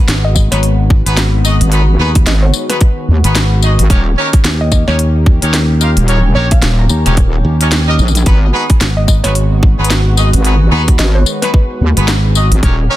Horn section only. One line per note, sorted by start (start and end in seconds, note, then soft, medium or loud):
0.52 0.59 B3 medium
0.52 0.59 D#4 medium
0.52 0.59 F#4 medium
0.52 0.59 G#4 medium
0.52 0.59 B4 medium
1.07 1.18 B3 medium
1.07 1.18 D#4 medium
1.07 1.18 F#4 medium
1.07 1.18 G#4 medium
1.07 1.18 B4 medium
1.45 1.55 D#4 medium
1.45 1.55 F#4 medium
1.45 1.55 G#4 medium
1.45 1.55 D#5 medium
1.72 1.82 B3 medium
1.72 1.83 D#4 medium
1.72 1.83 F#4 medium
1.72 1.83 G#4 medium
1.72 1.82 B4 loud
1.99 2.10 B3 loud
1.99 2.10 D#4 loud
1.99 2.10 F#4 medium
1.99 2.10 G#4 medium
1.99 2.10 B4 loud
2.70 2.77 B3 medium
2.70 2.77 D#4 medium
2.70 2.77 F#4 medium
2.70 2.77 G#4 medium
2.70 2.77 B4 medium
3.24 3.36 B3 medium
3.24 3.36 D#4 medium
3.24 3.36 F#4 medium
3.24 3.36 G#4 medium
3.24 3.36 B4 medium
3.63 3.73 D#4 medium
3.63 3.73 F#4 medium
3.63 3.73 G#4 medium
3.63 3.73 D#5 medium
3.90 4.01 C#4 medium
3.90 4.01 D#4 medium
3.90 4.01 G4 medium
3.90 4.01 A#4 medium
3.90 4.01 C#5 loud
4.17 4.28 C#4 loud
4.17 4.28 D#4 loud
4.17 4.28 G4 medium
4.17 4.28 A#4 medium
4.17 4.28 C#5 loud
4.88 4.95 C#4 medium
4.88 4.95 D#4 medium
4.88 4.95 G4 medium
4.88 4.95 A#4 medium
4.88 4.95 C#5 medium
5.43 5.54 C#4 medium
5.43 5.54 D#4 medium
5.43 5.54 G4 medium
5.43 5.54 A#4 medium
5.43 5.54 C#5 loud
5.81 5.91 D#4 medium
5.81 5.91 F4 medium
5.81 5.92 G4 medium
5.81 5.92 A#4 medium
5.81 5.91 F5 medium
6.08 6.19 C#4 medium
6.08 6.19 D#4 medium
6.08 6.19 G4 medium
6.08 6.19 A#4 medium
6.08 6.19 C#5 loud
6.35 6.46 C#4 loud
6.35 6.46 D#4 loud
6.35 6.46 G4 medium
6.35 6.46 A#4 medium
6.35 6.46 C#5 loud
7.06 7.13 C#4 medium
7.06 7.13 D#4 medium
7.06 7.13 G4 medium
7.06 7.13 A#4 medium
7.06 7.13 C#5 medium
7.61 7.68 C#4 medium
7.61 7.68 D#4 medium
7.61 7.68 G4 medium
7.61 7.68 A#4 medium
7.61 7.68 C#5 medium
7.88 7.95 D#4 loud
7.88 7.95 G4 medium
7.88 7.95 A#4 medium
7.88 7.95 D#5 loud
8.26 8.37 B3 medium
8.26 8.37 D#4 medium
8.26 8.37 F#4 medium
8.26 8.37 G#4 medium
8.26 8.37 B4 medium
8.53 8.64 B3 loud
8.53 8.64 D#4 loud
8.53 8.64 F#4 medium
8.53 8.64 G#4 medium
8.53 8.64 B4 loud
9.24 9.32 B3 medium
9.24 9.32 D#4 medium
9.24 9.32 F#4 medium
9.24 9.32 G#4 medium
9.24 9.32 B4 medium
9.79 9.91 B3 medium
9.79 9.91 D#4 medium
9.79 9.91 F#4 medium
9.79 9.91 G#4 medium
9.79 9.91 B4 medium
10.17 10.28 D#4 medium
10.17 10.28 F#4 medium
10.17 10.28 G#4 medium
10.17 10.28 D#5 medium
10.44 10.55 B3 medium
10.44 10.55 D#4 medium
10.44 10.55 F#4 medium
10.44 10.55 G#4 medium
10.44 10.55 B4 loud
10.72 10.82 B3 loud
10.72 10.82 D#4 loud
10.72 10.82 F#4 medium
10.72 10.82 G#4 medium
10.72 10.82 B4 loud
11.43 11.50 B3 medium
11.43 11.50 D#4 medium
11.43 11.50 F#4 medium
11.43 11.50 G#4 medium
11.43 11.50 B4 medium
11.97 12.09 B3 medium
11.97 12.09 D#4 medium
11.97 12.09 F#4 medium
11.97 12.09 G#4 medium
11.97 12.09 B4 medium
12.35 12.46 D#4 medium
12.35 12.46 F#4 medium
12.35 12.46 G#4 medium
12.35 12.46 D#5 medium
12.63 12.73 C#4 medium
12.63 12.73 D#4 medium
12.63 12.73 G4 medium
12.63 12.73 A#4 medium
12.63 12.73 C#5 loud
12.90 12.96 C#4 loud
12.90 12.96 D#4 loud
12.90 12.96 G4 medium
12.90 12.96 A#4 medium
12.90 12.96 C#5 loud